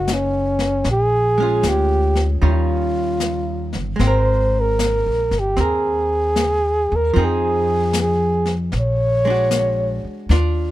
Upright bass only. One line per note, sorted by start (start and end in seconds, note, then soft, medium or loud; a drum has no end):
0.00 0.81 F#1 medium
0.85 1.59 A#1 medium
1.63 2.38 D2 medium
2.42 3.71 D#2 medium
3.75 3.98 G1 medium
4.00 5.01 G#1 medium
5.06 5.30 A#1 soft
5.31 5.56 G1 medium
5.58 6.87 D#2 medium
6.92 7.14 D#2 medium
7.16 8.69 F2 medium
8.73 10.01 A#1 medium
10.05 muted upright bass stroke soft
10.29 10.71 D#2 medium